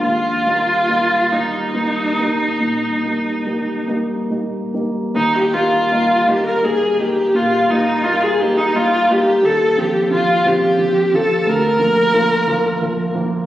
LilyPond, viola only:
\new Staff \with { instrumentName = "Viola" } { \time 12/8 \key ees \major \tempo 4. = 56 f'4. ees'2. r4. | ees'16 g'16 f'4 g'16 bes'16 aes'8 g'8 f'8 ees'8 f'16 aes'16 g'16 ees'16 f'8 g'8 | a'8 g'8 f'8 g'4 a'8 bes'2~ bes'8 r8 | }